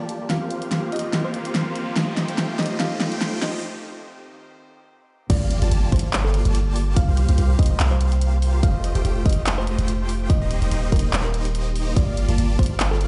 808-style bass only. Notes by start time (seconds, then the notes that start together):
5.30 G1
5.62 G1
5.72 G1
5.92 G1
6.45 G1
7.08 C2
7.29 C2
7.38 C2
7.59 C2
7.80 C2
8.63 F1
8.95 F1
9.05 F1
9.26 F1
9.79 F1
10.41 D#1
10.62 D#1
10.72 D#1
10.92 D#1
11.13 D#1
11.96 G1
12.29 G1
12.38 G1
12.59 G1